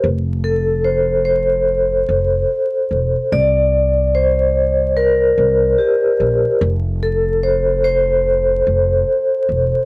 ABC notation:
X:1
M:4/4
L:1/16
Q:"Swing 16ths" 1/4=73
K:F
V:1 name="Vibraphone"
z2 A2 c2 c8 z2 | d4 c4 B4 G3 z | z2 A2 c2 c8 z2 |]
V:2 name="Upright bass" clef=bass
F,,,8- F,,,2 F,,,2 z2 E,,, z | C,,8- C,,2 C,,2 z2 B,,, z | F,,,8- F,,,2 F,,,2 z2 E,,, z |]